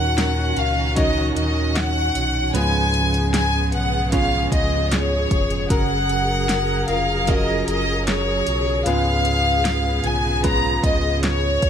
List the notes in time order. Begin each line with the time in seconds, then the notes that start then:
Already playing: D#2 A#2 D#3 F#3 C#4 D#4 F#4 A#4 F#5
0.17 F#3 C#4 D#4 A#4, snare, closed hi-hat
0.57 C#2 C#4 D#4 A#4 F5, closed hi-hat
0.96 D#3 F#3 C#4 D#4 F#4 A#4 C#5 D#5, kick, closed hi-hat
1.36 D#2 D#5, closed hi-hat
1.76 F#5, snare, closed hi-hat
2.15 B1, closed hi-hat
2.54 C#2 G#2 C#3 F3 G#3 B3 C#4 F4 G#4 B4 G#5, closed hi-hat
2.94 closed hi-hat
3.14 closed hi-hat
3.33 G#3 B3 G#4 G#5, snare, closed hi-hat
3.72 B1 F#5, closed hi-hat
4.11 C#3 G#3 B3 C#4 F4 G#4 C#5 F5, kick, closed hi-hat
4.52 C#2 D#5, kick, closed hi-hat
4.92 C#5, snare, closed hi-hat
5.31 F1, kick, closed hi-hat
5.50 closed hi-hat
5.69 F#1 C#3 F#3 C#4 F#4 A#4 F#5, kick, closed hi-hat
6.09 closed hi-hat
6.49 F#3 C#4 A#4, snare, closed hi-hat
6.88 F1 C#4 F4 A#4 F5, closed hi-hat
7.27 F#3 C#4 F4 F#4 A#4 D#5, kick, closed hi-hat
7.68 F#1 D#5, closed hi-hat
8.07 C#5, snare, closed hi-hat
8.47 B1, closed hi-hat
8.85 C#2 G#2 C#3 G#3 B3 C#4 F4 G#4 B4 F5, closed hi-hat
9.25 closed hi-hat
9.65 snare, closed hi-hat
10.04 B1 B3 F4 G#4 G#5, closed hi-hat
10.43 C#3 G#3 B3 C#4 F4 G#4 B4 A#5, kick, closed hi-hat
10.83 C#2 D#5, kick, closed hi-hat
11.23 C#5, snare, closed hi-hat
11.62 C#2, kick, closed hi-hat